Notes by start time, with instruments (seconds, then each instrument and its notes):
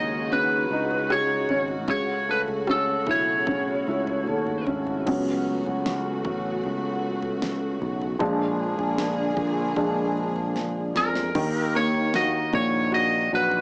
Already playing: fretless electric bass D#2, felt piano C#3 G#3 C#4 D#4, string section C#3 G#3 F#4, lead electric guitar D#5
0.32 felt piano C#4, lead electric guitar B4, floor tom
0.71 fretless electric bass C#2, felt piano D#4
0.91 floor tom
1.10 felt piano G#3, lead electric guitar C#5, cross-stick
1.49 fretless electric bass G#1, felt piano C#4, floor tom
1.68 floor tom
1.88 fretless electric bass C#2, string section C#3 A3, felt piano C#3, lead electric guitar C#5, kick, floor tom
2.29 felt piano A3, lead electric guitar B4
2.48 fretless electric bass C#2, floor tom
2.67 felt piano C#4, lead electric guitar A4, cross-stick
3.06 fretless electric bass B1, felt piano E4, kick, floor tom
3.11 lead electric guitar C#5
3.46 felt piano C#4, kick, floor tom
3.88 fretless electric bass C#2, felt piano E4
4.07 floor tom
4.27 fretless electric bass D#2, felt piano A3, high tom
4.47 mid tom
4.67 fretless electric bass G#1, felt piano C#4, mid tom
4.87 floor tom
5.06 fretless electric bass C#2, string section C#3 A3 F#4, felt piano F#3 B3 C#4, kick, floor tom, crash
5.66 fretless electric bass C#2, floor tom
5.86 snare
6.25 fretless electric bass A1, kick, floor tom
6.64 fretless electric bass C#2, floor tom
7.22 floor tom
7.42 snare
7.82 fretless electric bass B1, floor tom
8.02 floor tom
8.19 fretless electric bass A#1, string section D3 A#3 G#4, felt piano F3 G#3 D4, kick, floor tom
8.79 fretless electric bass A#1, floor tom
8.98 snare
9.37 fretless electric bass A#1, kick, floor tom
9.76 fretless electric bass A#1, felt piano F3 G#3 D4, kick, floor tom
10.36 floor tom
10.56 snare
10.95 fretless electric bass F2, lead electric guitar A#4, snare
11.16 snare
11.35 fretless electric bass D#2, felt piano D#3, kick, floor tom, crash
11.76 felt piano A#3, lead electric guitar C#5
11.94 floor tom
12.14 felt piano F#4, lead electric guitar D#5, snare
12.53 fretless electric bass A#1, felt piano A#2, lead electric guitar C#5, kick, floor tom
12.92 felt piano F#4, lead electric guitar D#5, floor tom
13.33 fretless electric bass A#1, felt piano F#3, lead electric guitar B4
13.51 floor tom